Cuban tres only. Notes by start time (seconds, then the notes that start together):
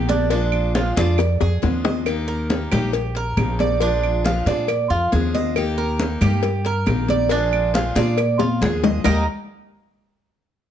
0.09 D4
0.31 D4
0.75 F4
0.97 D5
1.41 G#4
1.84 D#5
2.28 A#4
2.72 G4
3.17 A#4
3.60 D5
3.81 D4
4.25 F4
4.47 D5
4.90 F4
5.13 G#4
5.35 D#5
5.78 A#4
6.22 G4
6.66 A#4
7.10 D5
7.31 D4
7.75 F4
7.97 D5
8.40 F4
8.62 G#4
8.84 D#5
9.04 D#4 A#4 D#5